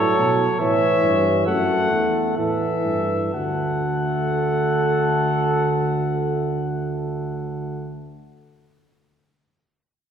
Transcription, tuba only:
Already playing: A2
0.19 B2
0.61 A2
1.04 G2
1.47 F#2
1.91 E2
2.38 A2
2.85 G2
3.34 D2

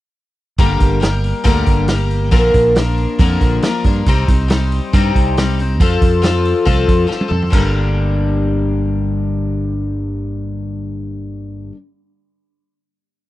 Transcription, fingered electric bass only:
0.58 G1
0.81 G1
1.45 D2
1.67 G1
2.32 A#1
2.54 A#1
3.19 F2
3.42 A#1
3.85 G2
4.07 C2
4.28 C2
4.93 G2
5.15 C2
5.80 F2
6.02 F2
6.67 C2
6.88 F2
7.31 F2
7.53 G1

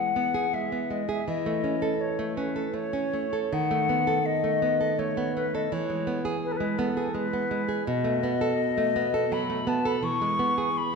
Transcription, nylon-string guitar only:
Already playing: E3 G#3 G#4
0.16 B3
0.34 G#4
0.53 G#3
0.72 B3
0.91 G#3
1.09 G#4
1.28 E3
1.46 A3
1.64 C#4
1.82 A4
2.19 A3
2.37 C#4
2.56 A4
2.74 A3
2.93 C#4
3.13 A3
3.33 A4
3.53 D#3
3.71 A3
3.89 B3
4.07 A4
4.44 A3
4.62 B3
4.81 A4
4.99 A3
5.17 B3
5.37 A3
5.55 A4
5.72 E3
5.90 G#3
6.07 B3
6.25 G#4
6.60 G#3
6.79 B3
6.97 G#4
7.15 G#3
7.33 B3
7.51 G#3
7.69 G#4
7.87 B2
8.04 A3
8.23 B3
8.41 A4
8.78 A3
8.96 B3
9.14 A4
9.32 F#3
9.50 A3
9.67 B3
9.85 A4
10.02 E3
10.22 G#3
10.39 B3
10.58 G#4

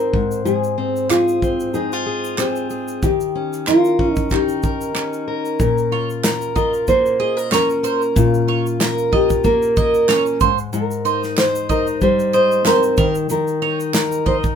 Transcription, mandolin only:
5.92 C#5
6.56 D#5
7.20 D#5
7.52 C#5
7.84 C5
8.48 C#5
9.13 D#5
9.77 D#5
10.09 C#5
10.41 C5
11.05 C5
11.69 D#5
12.33 D#5
12.66 C5
12.98 A#4
13.62 C#5
14.26 D#5

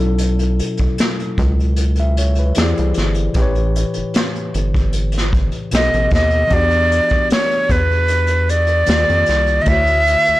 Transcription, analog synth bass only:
Already playing: B1
0.80 C#2
1.39 C#2
2.58 E2
2.79 C2
2.98 G1
3.36 A1
3.97 G1
4.55 G1
5.73 B1
5.94 A1
6.12 D#2
6.52 E2
7.12 E2
7.70 E2
8.88 D#2
9.10 F2
9.29 C2
9.67 D2
10.28 D2

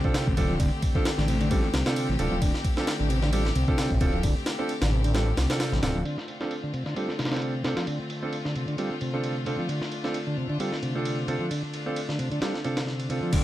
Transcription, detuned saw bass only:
0.27 A1
0.37 D1
0.50 D1
0.60 D1
1.18 A1
1.74 C2
2.09 A1
2.19 D1
2.32 D1
2.42 D1
3.00 A1
3.56 C2
3.91 A1
4.01 D1
4.13 D1
4.24 D1
4.81 A1
5.37 C2
5.72 A1
5.83 D1
5.95 D1
13.33 D1

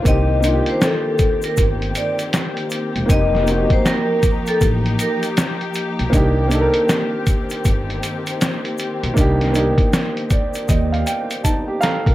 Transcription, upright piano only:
0.02 A#3 C4
0.07 D#4 G4
0.40 A#3 D4
0.45 D#4 F4
0.54 G4
3.06 A#3 C4
3.11 D#4 G4
3.44 A#3 C4
3.49 D#4 F#4
3.57 G4
6.10 A#3 D4
6.14 D#4 G4
6.48 A#3 D4
6.52 D#4 A4
6.61 A#4
9.14 A#3 D4
9.19 D#4 G4
9.52 A#3 D4
9.56 D#4 G4
10.31 D5
10.68 D#5
10.92 F5
11.06 G5
11.44 D#4 A5
11.68 G4
11.80 A4 F5 A#5
12.06 A#4

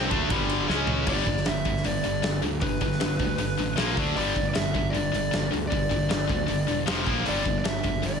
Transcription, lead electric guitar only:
1.09 D5
1.46 E5
1.85 D5
2.61 B4
4.16 D5
4.49 D5
4.55 E5
4.90 D5
5.68 D5
7.29 D5
7.59 D5
7.67 E5
8.06 D5

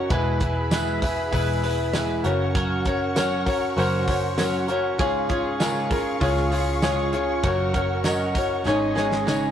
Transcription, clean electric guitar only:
Already playing: C#4 F#4 A#4
0.10 E3 G#3 B3 E4 B4
0.41 B3 E4 B4
0.71 E3 G#3 B3 E4 B4
1.02 B3 E4 B4
1.32 G#3 B3 E4 B4
1.63 B3 E4 B4
1.94 E3 G#3 B3 E4 B4
2.24 C#4 F#4 A#4
2.55 F#3 C#4 F#4 A#4
2.86 C#4 F#4 A#4
3.16 F#3 C#4 F#4 A#4
3.46 C#4 F#4 A#4
3.77 F#3 C#4 F#4 A#4
4.07 C#4 F#4 A#4
4.38 F#3 C#4 F#4 A#4
4.68 C#4 F#4 A#4
4.99 C#3 G#3 C#4 F4 G#4
5.29 C#4 F4 G#4
5.60 C#3 G#3 C#4 F4 G#4
5.90 C#4 F4 G#4
6.21 G#3 C#4 F4 G#4
6.51 C#4 F4 G#4
6.82 C#3 G#3 C#4 F4 G#4
7.12 C#4 F4 G#4
7.43 F#3 C#4 F#4 A#4
7.73 C#4 F#4 A#4
8.04 F#3 C#4 F#4 A#4
8.35 C#4 F#4 A#4
8.65 G#3 C#4 D#4 G#4
8.96 G#3 C#4 D#4 G#4
9.26 G#2 C#3 G#3 C#4 D#4 G#4

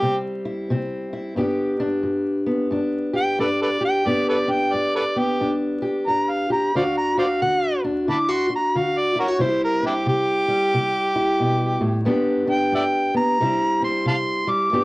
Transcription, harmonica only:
Already playing: G4
3.17 G5
3.40 A4 B4 D5
3.62 A4 B4 D5
3.85 G5
4.06 D5
4.29 A4 B4 D5
4.50 G5
4.73 D5
4.96 A4 B4 D5
5.18 G4
6.07 A#5
6.29 F5
6.52 A#5
6.76 C5 D5 F5
6.97 A#5
7.19 C5 D5 F5
7.42 F#5
8.10 A5 B5 D6
8.31 C6
8.55 A#5
8.77 F5
8.98 D5
9.20 F#4 A#4 C#5
9.42 C5
9.64 A#4
9.86 D4 E4 G4
10.08 G4
12.51 G5
12.75 D5 E5 G5
13.16 A#5
13.84 C6
14.08 F5 A5 C6
14.50 D6

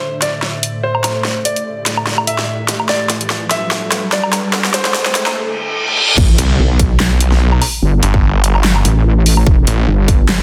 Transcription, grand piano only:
Already playing: C5
0.22 D5
0.83 C5
1.45 D5
2.27 E5
2.89 D5
3.51 E5
4.12 D5
4.74 C5

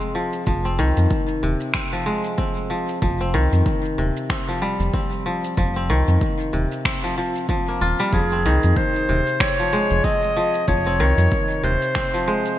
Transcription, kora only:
Already playing: C3 F3 G#3 C4
0.15 F3
0.47 F3
0.65 C4
0.79 D#3
1.43 C3
1.75 C4
1.93 F3
2.06 G#3
2.38 C4
2.70 F3
3.02 F3
3.21 C4
3.34 D#3
3.98 C3
4.30 C4
4.48 F3
4.62 G3
4.94 C4
5.26 F3
5.58 F3
5.76 C4
5.90 D#3
6.53 C3
6.85 C4
7.04 F3
7.18 F3
7.49 F3
7.68 A#3
7.81 F4
8.00 G3
8.14 F3
8.32 C4
8.46 D#3
9.09 C3
9.41 C4
9.59 F3
9.73 G#3
10.05 C4
10.37 F3
10.68 F3
10.86 C4
11.00 D#3
11.63 C3
11.95 C4
12.14 F3
12.28 G#3

